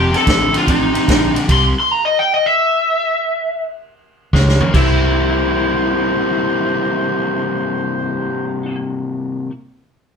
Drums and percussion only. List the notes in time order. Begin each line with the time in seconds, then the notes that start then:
0.14 snare, ride
0.27 kick, snare, ride
0.54 snare, ride
0.68 kick, ride
0.95 snare, ride
1.08 kick, snare, ride
1.36 snare, ride
1.49 kick, crash, ride
4.33 kick, snare
4.49 snare
4.61 floor tom
4.74 kick, crash